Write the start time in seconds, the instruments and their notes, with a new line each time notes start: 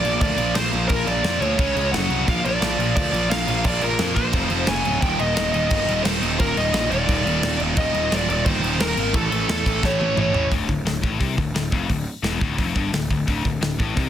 Already playing: lead electric guitar D5
0.04 picked electric bass A#1, distorted electric guitar A#2 F3 A#3, crash
0.20 picked electric bass D2, distorted electric guitar A#2 F3 A#3, lead electric guitar D5, kick, crash
0.38 picked electric bass A#1, distorted electric guitar A#2 F3 A#3, crash
0.55 picked electric bass A#1, distorted electric guitar A#2 F3 A#3, lead electric guitar C5, snare, crash
0.71 picked electric bass A#1, distorted electric guitar A#2 F3 A#3, crash
0.88 picked electric bass A#1, distorted electric guitar A#2 F3 A#3, lead electric guitar A#4, kick, crash
1.06 picked electric bass A#1, distorted electric guitar A#2 F3 A#3, lead electric guitar D5, crash
1.23 picked electric bass F2, distorted electric guitar A#2 F3 A#3, snare, crash
1.40 picked electric bass D2, distorted electric guitar A#2 F3 A#3, lead electric guitar C#5, crash
1.58 picked electric bass C#2, distorted electric guitar C#3 G#3 C#4, kick, crash
1.76 picked electric bass C#2, distorted electric guitar C#3 G#3 C#4, crash
1.91 picked electric bass F#1, distorted electric guitar F#2 C#3 F#3, lead electric guitar F#5, snare, crash
2.10 picked electric bass C2, distorted electric guitar F#2 C#3 F#3, crash
2.27 picked electric bass A#1, distorted electric guitar A#2 F3 A#3, lead electric guitar F5, kick, crash
2.44 picked electric bass A#1, distorted electric guitar A#2 F3 A#3, lead electric guitar D5, crash
2.61 picked electric bass A#1, distorted electric guitar A#2 F3 A#3, snare, crash
2.79 picked electric bass A#1, distorted electric guitar A#2 F3 A#3, crash
2.96 picked electric bass D2, distorted electric guitar A#2 F3 A#3, lead electric guitar D5, kick, crash
3.13 picked electric bass A#1, distorted electric guitar A#2 F3 A#3, crash
3.30 picked electric bass A#1, distorted electric guitar A#2 F3 A#3, lead electric guitar F5, snare, crash
3.47 picked electric bass A#1, distorted electric guitar A#2 F3 A#3, crash
3.64 picked electric bass A#1, distorted electric guitar A#2 F3 A#3, lead electric guitar D5, kick, crash
3.81 picked electric bass A#1, distorted electric guitar A#2 F3 A#3, lead electric guitar A#4, crash
3.99 picked electric bass F2, distorted electric guitar A#2 F3 A#3, snare, crash
4.15 picked electric bass A#1, distorted electric guitar A#2 F3 A#3, lead electric guitar C5, kick, crash
4.33 picked electric bass F1, distorted electric guitar F2 C3 F3, kick, crash
4.50 picked electric bass F1, distorted electric guitar F2 C3 F3, crash
4.67 picked electric bass F#1, distorted electric guitar F#2 C#3 F#3, lead electric guitar G#5, snare, crash
4.84 picked electric bass D1, distorted electric guitar F#2 C#3 F#3, crash
5.01 picked electric bass D#1, distorted electric guitar D#2 A#2 D#3, lead electric guitar G5, kick, crash
5.19 picked electric bass D#1, distorted electric guitar D#2 A#2 D#3, lead electric guitar D#5, crash
5.35 picked electric bass D#1, distorted electric guitar D#2 A#2 D#3, snare, crash
5.52 picked electric bass D#1, distorted electric guitar D#2 A#2 D#3, lead electric guitar D#5, crash
5.69 picked electric bass G1, distorted electric guitar D#2 A#2 D#3, kick, crash
5.87 picked electric bass D#1, distorted electric guitar D#2 A#2 D#3, crash
6.03 picked electric bass D#1, distorted electric guitar D#2 A#2 D#3, lead electric guitar C5, snare, crash
6.22 picked electric bass D#1, distorted electric guitar D#2 A#2 D#3, crash
6.39 picked electric bass D#1, distorted electric guitar D#2 A#2 D#3, lead electric guitar A#4, kick, crash
6.56 picked electric bass D#1, distorted electric guitar D#2 A#2 D#3, lead electric guitar D#5, crash
6.73 picked electric bass A#1, distorted electric guitar D#2 A#2 D#3, snare, crash
6.90 picked electric bass D#1, distorted electric guitar D#2 A#2 D#3, lead electric guitar D5, crash
7.07 picked electric bass D#1, distorted electric guitar D#2 A#2 D#3, kick, crash
7.24 picked electric bass D#1, distorted electric guitar D#2 A#2 D#3, crash
7.42 picked electric bass D#1, distorted electric guitar D#2 A#2 D#3, snare, crash
7.59 picked electric bass D#1, distorted electric guitar D#2 A#2 D#3, crash
7.77 picked electric bass D#1, distorted electric guitar D#2 A#2 D#3, lead electric guitar D#5, kick, crash
7.93 picked electric bass D#1, distorted electric guitar D#2 A#2 D#3, crash
8.11 picked electric bass D#1, distorted electric guitar D#2 A#2 D#3, snare, crash
8.15 lead electric guitar D5
8.28 picked electric bass D#1, distorted electric guitar D#2 A#2 D#3, lead electric guitar D5, crash
8.45 picked electric bass G1, distorted electric guitar D#2 A#2 D#3, lead electric guitar C5, kick, crash
8.62 picked electric bass D#1, distorted electric guitar D#2 A#2 D#3, crash
8.79 picked electric bass D#1, distorted electric guitar D#2 A#2 D#3, lead electric guitar A#4, snare, crash
8.96 picked electric bass G#1, distorted electric guitar D#2 A#2 D#3, crash
9.13 picked electric bass A1, distorted electric guitar A2 E3 A3, lead electric guitar A4, kick, crash
9.30 picked electric bass A1, distorted electric guitar A2 E3 A3, crash
9.47 picked electric bass E2, distorted electric guitar A2 E3 A3, lead electric guitar A4, snare, crash
9.64 picked electric bass A1, distorted electric guitar A2 E3 A3, kick, crash
9.82 picked electric bass A1, distorted electric guitar A2 E3 A3, lead electric guitar C#5, kick, snare
9.99 picked electric bass A1, distorted electric guitar A2 E3 A3, high tom
10.16 picked electric bass A1, distorted electric guitar A2 E3 A3, lead electric guitar C#5, mid tom
10.33 picked electric bass A1, distorted electric guitar A2 E3 A3, floor tom
10.51 picked electric bass D1, distorted electric guitar D2, kick, open hi-hat
10.69 picked electric bass D1, distorted electric guitar D2, kick
10.85 picked electric bass D1, distorted electric guitar D2, snare, open hi-hat
11.02 picked electric bass A1, distorted electric guitar A2, kick
11.19 picked electric bass C2, distorted electric guitar C3, kick, open hi-hat
11.37 picked electric bass D1, distorted electric guitar D2, kick
11.53 picked electric bass D1, distorted electric guitar D2, snare, open hi-hat
11.72 picked electric bass F1, distorted electric guitar F2, kick
11.89 picked electric bass D1, distorted electric guitar D2, kick, open hi-hat
12.23 picked electric bass E1, distorted electric guitar E2, snare, open hi-hat
12.40 picked electric bass D1, distorted electric guitar D2, kick
12.58 picked electric bass F1, distorted electric guitar F2, kick, open hi-hat
12.75 picked electric bass G1, distorted electric guitar G2, kick
12.92 picked electric bass D1, distorted electric guitar D2, snare, open hi-hat
13.11 picked electric bass D1, distorted electric guitar D2, kick
13.27 picked electric bass D1, distorted electric guitar D2, kick, open hi-hat
13.45 picked electric bass D1, distorted electric guitar D2, kick
13.61 picked electric bass D1, distorted electric guitar D2, snare, open hi-hat
13.79 picked electric bass A1, distorted electric guitar A2, kick
13.96 picked electric bass C2, distorted electric guitar C3, kick, open hi-hat